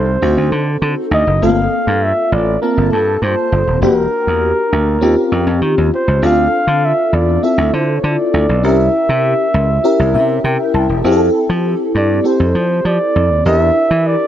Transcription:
Already playing: C2 C4 D#4 G4 A4 C5
0.22 D2 C4 D#4 F#4 A4
0.37 D2
0.52 D3
0.82 D3
1.11 D2 D#5
1.27 F#1
1.42 G1 A3 C4 F4 A4 F5
1.49 A#3
1.87 G2
2.03 E5
2.32 A1 D5
2.62 A#3 C4 F4 A#4 A5
2.77 G1
2.92 G2 A4
3.22 G2 C5
3.52 G1
3.67 D#1
3.82 E1 A#3 D4 F#4 G4 A#4
4.27 E2
4.73 D2
5.01 D#2 C4 C#4 F4 G4
5.32 F2
5.47 F2
5.62 D#3
5.78 D#2
5.95 C5
6.08 C#2
6.22 D2 C4 D4 F4 A4 F5
6.67 D3
6.85 E5
7.13 E2 D5
7.43 C4 E4 F4 A4 E5
7.58 D2
7.73 D3 C5
7.98 C#5
8.04 D3 D5
8.34 D2
8.49 B1
8.63 C2 C#4 E4 G4 A#4 E5
9.09 C3
9.54 C#2
9.84 C#4 E4 G4 A#4
9.99 C2
10.14 C3 E5
10.44 C3 G5
10.74 C2 A5
10.89 E1
11.04 F2 C4 E4 G4 G#4
11.12 A4
11.49 F3
11.95 G2 D5
12.24 C4 E4 G4 A4 C5
12.40 F2
12.55 F3
12.85 F3 D5
13.16 F2
13.30 D#2
13.45 E2 D4 E4 G4 A#4 E5
13.91 E3
14.06 D5

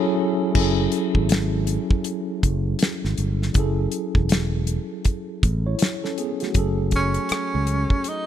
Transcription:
Already playing: F#3 C#4 E4 G#4 A4
0.53 F#1 F#3 C#4 E4, kick, crash
0.57 G#4 A4
0.92 closed hi-hat
1.15 G#1, kick
1.29 snare, closed hi-hat
1.67 closed hi-hat
1.91 kick
2.04 closed hi-hat
2.43 F#1, kick, closed hi-hat
2.79 snare, closed hi-hat
3.05 G#1, snare
3.17 G1, closed hi-hat
3.42 snare
3.53 F#1 F#3 C#4 E4, kick, closed hi-hat
3.58 G#4 A4
3.92 closed hi-hat
4.15 E1, kick
4.29 snare, closed hi-hat
4.67 closed hi-hat
5.05 kick, closed hi-hat
5.43 A1, kick, closed hi-hat
5.66 E4 C#5
5.79 snare, closed hi-hat
6.04 C#4 A4, snare
6.18 B3 G#4, closed hi-hat
6.40 A3 F#4, snare, closed hi-hat
6.52 F#1 F#3 C#4, kick, closed hi-hat
6.57 G#4 A4
6.91 kick, closed hi-hat
6.96 C#4
7.14 closed hi-hat
7.29 muted fingered electric bass stroke, cross-stick, closed hi-hat
7.55 C#2
7.67 closed hi-hat
7.90 kick
8.04 closed hi-hat
8.08 D#4

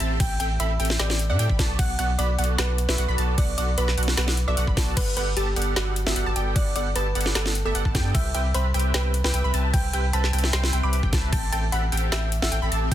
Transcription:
Already playing: E5
0.00 A1 C4 G4 A4 E5 A5, closed hi-hat
0.20 A1 C4 G4 A4 E5 G5, kick, closed hi-hat, crash
0.40 A1 C4 G4 A4 E5 G5, closed hi-hat
0.60 A1 C4 G4 A4 E5 B5, closed hi-hat
0.80 A1 C4 G4 A4 E5 G5, closed hi-hat
0.85 closed hi-hat
0.90 snare
0.99 A1 C4 G4 A4 D5 E5 G5, snare, closed hi-hat
1.10 snare
1.19 closed hi-hat
1.30 A2 C4 G4 A4 D5 E5 F#5
1.39 A2 C4 G4 A4 E5 G5, closed hi-hat
1.50 A1 C4 G4 A4 E5 B5, kick
1.59 B1 B3 F#4 A4 D5 A5, kick, snare, closed hi-hat
1.79 B1 B3 F#4 A4 D5 F#5, kick, closed hi-hat, crash
1.99 B1 B3 F#4 A4 D5 F#5, closed hi-hat
2.19 B1 B3 F#4 A4 D5 B5, closed hi-hat
2.39 B1 B3 F#4 A4 D5 F#5, closed hi-hat
2.44 closed hi-hat
2.58 B1 B3 F#4 A4 B4 D5 F#5, snare, closed hi-hat
2.78 closed hi-hat
2.89 B1 B3 F#4 A4 B4 D5 E5, snare
2.98 B1 B3 F#4 A4 D5 F#5, closed hi-hat
3.09 B1 B3 F#4 A4 D5 B5
3.18 B1 B3 F#4 A4 D5 A5, closed hi-hat
3.38 B1 B3 F#4 A4 D5 F#5, kick, closed hi-hat, crash
3.58 B1 B3 F#4 A4 D5 F#5, closed hi-hat
3.78 B1 B3 F#4 A4 B4 D5 B5, closed hi-hat
3.88 snare
3.97 B1 B3 F#4 A4 D5 F#5, closed hi-hat
4.03 closed hi-hat
4.08 snare
4.17 B1 B3 F#4 A4 B4 D5 F#5, snare, closed hi-hat
4.28 snare
4.37 closed hi-hat
4.48 B1 B3 F#4 A4 D5 E5
4.57 B1 B3 F#4 A4 D5 F#5, closed hi-hat
4.67 B1 B3 F#4 A4 D5 B5, kick
4.77 B1 B3 F#4 A4 D5 A5, kick, snare, open hi-hat
4.97 G1 B3 G4 A4 B4 D5 F#5, kick, closed hi-hat, crash
5.17 G1 B3 G4 A4 B4 D5 F#5, closed hi-hat
5.37 G1 B3 G4 A4 D5 A5, closed hi-hat
5.56 G1 B3 G4 A4 D5 F#5, closed hi-hat
5.62 closed hi-hat
5.76 G1 B3 F#4 G4 A4 D5 F#5, snare, closed hi-hat
5.96 closed hi-hat
6.07 G1 B3 F#4 G4 A4 D5 E5, snare
6.16 G1 B3 G4 A4 D5 F#5, closed hi-hat
6.26 G1 B3 G4 A4 D5 A5
6.36 G1 B3 G4 A4 D5 G5, closed hi-hat
6.56 G1 B3 G4 A4 D5 F#5, kick, closed hi-hat, crash
6.76 G1 B3 G4 A4 D5 F#5, closed hi-hat
6.96 G1 B3 G4 A4 B4 D5 A5, closed hi-hat
7.15 G1 B3 G4 A4 D5 F#5, closed hi-hat
7.21 closed hi-hat
7.26 snare
7.35 G1 B3 G4 A4 D5 F#5, snare, closed hi-hat
7.46 snare
7.55 closed hi-hat
7.65 G1 B3 G4 A4 D5 E5
7.75 G1 B3 G4 A4 D5 F#5, closed hi-hat
7.85 G1 B3 G4 A4 D5 A5, kick
7.95 G2 B3 G4 A4 D5 G5, kick, snare, closed hi-hat
8.15 C2 C4 G4 B4 E5 G5, kick, closed hi-hat, crash
8.35 C2 C4 G4 B4 E5 G5, closed hi-hat
8.54 C2 C4 G4 B4 C5 E5 B5, closed hi-hat
8.74 C2 C4 G4 B4 E5 G5, closed hi-hat
8.79 closed hi-hat
8.94 C2 C4 G4 B4 E5 G5, snare, closed hi-hat
9.14 closed hi-hat
9.24 C2 C4 G4 B4 E5 G5, snare
9.34 C2 C4 G4 B4 E5 G5, closed hi-hat
9.44 C2 C4 G4 B4 E5 B5
9.54 C2 C4 G4 B4 E5 A5, closed hi-hat
9.74 C2 C4 G4 B4 E5 G5, kick, closed hi-hat, crash
9.93 C2 C4 G4 B4 E5 G5, closed hi-hat
10.13 C2 C4 G4 B4 E5 A5 B5, closed hi-hat
10.24 snare
10.33 C2 C4 G4 B4 E5 G5, closed hi-hat
10.39 closed hi-hat
10.44 snare
10.53 C2 C4 G4 B4 E5 G5 C6, snare, closed hi-hat
10.64 snare
10.73 C2 C4 G4 B4 E5 G5, closed hi-hat
10.83 C2 C4 G4 B4 E5 B5 D6
10.93 closed hi-hat
11.03 C2 C4 G4 B4 E5 G5, kick
11.13 C2 C4 G4 B4 E5 A5, kick, snare, closed hi-hat
11.33 A1 C4 G4 A4 E5 G5 A5, kick, closed hi-hat, crash
11.52 A1 C4 G4 A4 E5 G5 A5, closed hi-hat
11.72 A1 C4 G4 A4 E5 F#5 B5, closed hi-hat
11.92 A1 C4 G4 A4 E5 G5, closed hi-hat
11.97 closed hi-hat
12.12 A1 C4 G4 A4 E5 G5, snare, closed hi-hat
12.32 closed hi-hat
12.42 A1 C4 G4 A4 E5 F#5, snare
12.52 A1 C4 G4 A4 E5 G5, closed hi-hat
12.62 A1 C4 G4 A4 E5 B5
12.72 A1 C4 G4 A4 E5 A5, closed hi-hat

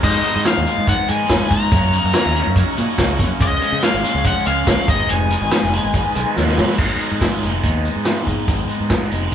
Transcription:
0.02 G#2 D#3 G#3 B3 D#4 G#4 B4 D#5, kick, crash, shaker
0.23 G#2 D#3 G#3 B3 D#4, closed hi-hat, shaker
0.35 G#2, shaker
0.44 G#2 D#3 G#3 B3 D#4 F5, snare, closed hi-hat, tambourine, shaker
0.57 D#2
0.65 G#2 D#3 G#3 B3 D#4, closed hi-hat, shaker
0.77 G#2, shaker
0.87 G#2 D#3 G#3 B3 D#4 F#5, kick, closed hi-hat, shaker
1.08 G#2 D#3 G#3 B3 D#4 G#5, closed hi-hat, shaker
1.19 shaker
1.29 G#2 D#3 G#3 B3 D#4, kick, snare, closed hi-hat, tambourine, shaker
1.40 shaker
1.49 G#2 D#3 G#3 B3 D#4 A#5, kick, closed hi-hat, shaker
1.60 shaker
1.71 F#2 C#3 F#3 A#3 D#4 F#4 A#4 C#5, kick, closed hi-hat, shaker
1.75 C#4
1.93 F#2 C#3 F#3 A#3 C#4, closed hi-hat, shaker
2.03 F#2, shaker
2.14 F#2 C#3 F#3 A#3 C#4, snare, closed hi-hat, tambourine, shaker
2.26 D#2
2.35 F#2 C#3 F#3 A#3 C#4, snare, closed hi-hat, shaker
2.46 F#2, shaker
2.56 F#2 C#3 F#3 A#3 C#4, kick, closed hi-hat, shaker
2.76 F#2 A#2 C#3 F#3 A#3 C#4, closed hi-hat, shaker
2.89 shaker
2.98 C#2 F#2 C#3 F#3 A#3 C#4, kick, snare, closed hi-hat, tambourine, shaker
3.09 shaker
3.19 F#2 C#3 F#3 A#3 C#4, kick, closed hi-hat, shaker
3.30 shaker
3.40 C#2 C#3 F3 G#3 C#4 F4 G#4 C#5 D#5, kick, closed hi-hat, shaker
3.60 C#3 F3 G#3 C#4, closed hi-hat, shaker
3.72 C#3, shaker
3.82 C#3 F3 G#3 C#4 F5, snare, closed hi-hat, tambourine, shaker
3.94 G#1
4.03 C#3 F3 G#3 C#4, snare, closed hi-hat, shaker
4.15 C#2
4.24 C#3 F3 G#3 C#4 F#5, kick, closed hi-hat, shaker
4.46 C#2 C#3 F3 G#3 C#4 F5, closed hi-hat, shaker
4.67 C#2 C#3 F3 G#3 C#4, kick, snare, closed hi-hat, tambourine, shaker
4.79 shaker
4.86 G#1 G#2 D#3 G#3 B3 D#4 G#4 B4 D#5, kick, closed hi-hat
4.90 D#4, shaker
5.00 shaker
5.09 F1 G#2 D#3 G#3 B3 D#4 G#5, closed hi-hat, shaker
5.30 G#2 D#3 G#3 B3 D#4, closed hi-hat, shaker
5.42 G#1
5.51 G#2 D#3 G#3 B3 D#4, snare, closed hi-hat, tambourine, shaker
5.63 F1, shaker
5.72 G#2 D#3 G#3 B3 D#4, closed hi-hat, shaker
5.84 G#1, shaker
5.93 G#2 D#3 G#3 B3 D#4, kick, closed hi-hat, shaker
6.07 shaker
6.15 B1 G#2 D#3 G#3 B3 D#4, closed hi-hat, shaker
6.27 shaker
6.36 D#2 G#2 D#3 G#3 B3 D#4, snare, shaker
6.47 snare, shaker
6.57 G#1 G#2 D#3 G#3 B3 D#4, snare, shaker
6.68 snare, shaker
6.78 G#1 G#2 D#3 G#3 B3 D#4, kick, crash
7.00 G#3 B3 D#4, closed hi-hat
7.12 G#2
7.21 G#2 D#3 G#3 B3 D#4, kick, snare, closed hi-hat, tambourine
7.42 F1 G#3 B3 D#4, snare, closed hi-hat
7.62 D#2 G#2 D#3 G#3 B3 D#4, kick, closed hi-hat
7.83 G#3 B3 D#4, closed hi-hat
7.96 G#2
8.05 G#2 D#3 G#3 B3 D#4, snare, closed hi-hat, tambourine
8.25 G#2 G#3 B3 D#4, kick, closed hi-hat
8.47 G#1 G#2 D#3 G#3 B3 D#4, kick, closed hi-hat
8.68 G#3 B3 D#4, closed hi-hat
8.80 G#2
8.89 G#2 D#3 G#3 B3 D#4, kick, snare, closed hi-hat, tambourine
9.10 F1 G#3 B3 D#4, closed hi-hat
9.31 G#2

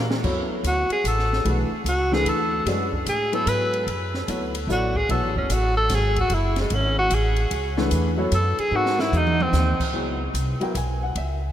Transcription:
Already playing: A#2 E3 D#4 G#4 B4
0.11 snare
0.23 F#2 F#3 B3 E4 A4 C#5, kick, crash
0.50 muted upright bass stroke
0.63 D2 F#4, hi-hat pedal, ride
0.90 G#4, muted upright bass stroke, ride
1.04 A1 A4, hi-hat pedal, ride
1.19 snare
1.33 snare
1.45 B1 E3 A3 D4 G#4 B4, ride
1.71 muted upright bass stroke
1.84 C#2, hi-hat pedal, ride
1.89 F#4
2.12 E3 A3 D4 G#4 A4 B4, snare
2.25 D2 A4, ride
2.66 F#2 G#3 C#4 F#4 B4 D5, snare, ride
2.93 kick
3.06 A2 G#4, hi-hat pedal, ride
3.32 F#3 B3 E4 A4 B4, ride
3.46 G#2 B4, hi-hat pedal, ride
3.73 ride
3.87 F#2, ride
4.14 snare
4.28 D2 F#3 B3 E4 A4 C#5, hi-hat pedal, ride
4.55 ride
4.67 A1 F#3 B3 E4 A4 D5, hi-hat pedal
4.72 F#4
4.95 G#4, kick
5.09 B1 F#3 B3 E4 A4 C#5, ride
5.23 A1
5.36 F#1 C#4, kick
5.49 A1 F#4, hi-hat pedal, ride
5.77 A4
5.89 G#1, snare, hi-hat pedal, ride
5.95 G#4
6.16 kick, ride
6.20 F#4
6.30 F#1, ride
6.34 E4
6.56 snare, ride
6.60 G#3
6.70 G#1, ride
6.75 C#4
6.99 F#4
7.10 A1, hi-hat pedal, ride
7.15 G#4
7.36 ride
7.51 C#2, ride
7.77 E3 A3 D4 G#4 B4, snare
7.91 E2, hi-hat pedal, ride
8.17 F#3 B3 E4 A4 C#5
8.32 F#2 A4, hi-hat pedal, ride
8.59 G#4, muted upright bass stroke, ride
8.71 G#2 G#3 C4 D#4 F#4 A#4
8.76 F#4
8.86 snare
8.99 E4, snare
9.12 E2, hi-hat pedal, mid tom
9.17 D#4
9.27 mid tom
9.40 C4, mid tom
9.53 D#2, snare, hi-hat pedal
9.80 kick, crash
9.93 C#2 F#3 B3 E4 G#4
10.34 C2, hi-hat pedal, ride
10.60 F#3 B3 E4 A#4 G5, muted upright bass stroke, ride
10.75 B1 G#5, hi-hat pedal, ride
11.03 F#5
11.15 C#2 E5, ride

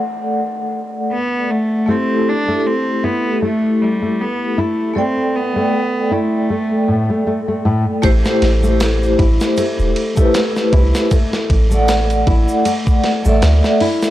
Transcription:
Already playing: A3 A4 D5 F#5, downlifter
1.13 B3
1.51 A3
1.86 A3 C4 E4 G4
1.91 A4
2.29 D4
2.48 A3
2.60 D4
2.67 C4
3.04 B3 E4
3.42 A3
3.82 G3
4.02 A3
4.21 B3
4.58 A3 E4
4.94 A3 A4 D5
4.98 C4 G5
5.36 B3
5.56 A3
6.11 A3 E4
6.50 A3
6.88 A2
7.10 A3
7.27 A3
7.48 A3
7.65 A2
8.02 A1 A3 E4 G4 C5, kick, ride, shaker
8.25 snare, shaker
8.42 A1, snare, ride
8.61 A3 E4 G4, shaker
8.66 C5
8.80 snare, ride, triangle, shaker
9.03 shaker
9.19 A1 E4, kick, ride
9.40 snare, shaker
9.57 A3, ride, shaker
9.79 E1, shaker
9.96 ride
10.16 A3 E4 G4, kick, shaker
10.20 B4
10.34 snare, ride, shaker
10.56 snare, shaker
10.73 C2 E4, kick, ride
10.95 snare, shaker
11.11 A3, kick, ride, shaker
11.33 snare, shaker
11.50 A1, kick, ride
11.70 A3 A4 D5, shaker
11.74 F#5
11.88 snare, ride, triangle, shaker
12.10 ride, shaker
12.27 A1 E4, kick, ride
12.48 shaker
12.65 A3, ride, shaker
12.87 kick, shaker
13.04 snare, ride
13.23 A1 A3 A4 D5, triangle, shaker
13.27 E5
13.42 D2, snare, ride, shaker
13.64 snare, shaker
13.80 E4, open hi-hat
14.02 snare, shaker

